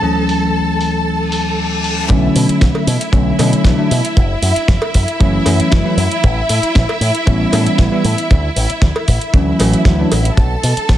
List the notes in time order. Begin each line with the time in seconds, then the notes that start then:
Already playing: A4 A5
0.02 D2 E3 F#3 A3 C#4
0.29 open hi-hat
0.81 open hi-hat
1.06 reverse cymbal
1.32 open hi-hat
1.84 open hi-hat
2.08 B1 D3 F#3 A3 C#4 E4 E5, kick, closed hi-hat
2.36 B2, open hi-hat
2.49 muted picked electric bass stroke, closed hi-hat
2.61 B1, kick, snare, closed hi-hat
2.75 cowbell
2.87 B2, open hi-hat
3.01 closed hi-hat
3.12 B1 D3 F#3 A3 C#4, kick, closed hi-hat
3.38 B2 D3 F#3 A3 C#4, snare, open hi-hat, cowbell
3.53 muted picked electric bass stroke, closed hi-hat
3.64 B1 D3 F#3 A3 D4, kick, snare, closed hi-hat
3.78 D3 F#3 A3 D4
3.91 B2, open hi-hat
4.05 closed hi-hat
4.17 F#1, kick, closed hi-hat
4.42 F#2, open hi-hat
4.56 muted picked electric bass stroke, closed hi-hat
4.68 F#1, kick, snare, closed hi-hat
4.82 cowbell
4.94 F#2, kick, open hi-hat
5.08 closed hi-hat
5.20 F#1 E3 F#3 A3 C#4, kick, closed hi-hat
5.45 F#2 E3 F#3 A3 C#4, snare, open hi-hat, cowbell
5.60 muted picked electric bass stroke, closed hi-hat
5.71 F#1 E3 F#3 A3 E4, kick, snare, closed hi-hat
5.85 E3 F#3 A3 E4
5.97 F#2, open hi-hat
6.11 closed hi-hat
6.24 A1, kick, closed hi-hat
6.49 A2, open hi-hat
6.63 muted picked electric bass stroke, closed hi-hat
6.75 A1, kick, snare, closed hi-hat
6.89 cowbell
7.01 A2, open hi-hat
7.15 closed hi-hat
7.26 A1 E3 G3 B3 C#4, kick, closed hi-hat
7.52 A2 E3 G3 B3 C#4, snare, open hi-hat, cowbell
7.66 muted picked electric bass stroke, closed hi-hat
7.78 A1 E3 G3 B3 E4, kick, snare, closed hi-hat
7.92 E3 G3 B3 E4
8.04 A2, open hi-hat
8.18 closed hi-hat
8.31 D2, kick, closed hi-hat
8.56 A1, open hi-hat
8.70 closed hi-hat
8.82 D2, kick, snare, closed hi-hat
8.96 cowbell
9.08 A1, kick, open hi-hat
9.21 closed hi-hat
9.33 D2 E3 F#3 A3 C#4, kick, closed hi-hat
9.59 A1 E3 F#3 A3 C#4, snare, open hi-hat, cowbell
9.73 muted picked electric bass stroke, closed hi-hat
9.85 D2 E3 F#3 A3 D4, kick, snare, closed hi-hat
9.99 E3 F#3 A3 D4
10.12 A1, open hi-hat, cowbell
10.25 closed hi-hat
10.37 B1 A4 A5, kick, closed hi-hat
10.63 B2, open hi-hat
10.77 muted picked electric bass stroke, closed hi-hat
10.89 B1, kick, snare, closed hi-hat